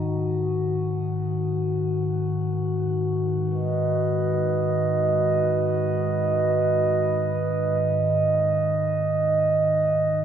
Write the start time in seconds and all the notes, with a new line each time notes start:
Already playing: G#2 D#3 D#4 F#4
3.44 B4
3.48 D#5
7.33 G#2 D#3
7.85 D#5